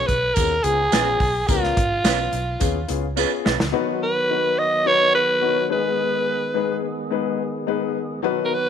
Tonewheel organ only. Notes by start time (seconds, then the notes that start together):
3.75 D#3 F#3 B3 F#4
5.71 G#3 B3 G#4
8.22 D#3 F#3 B3 F#4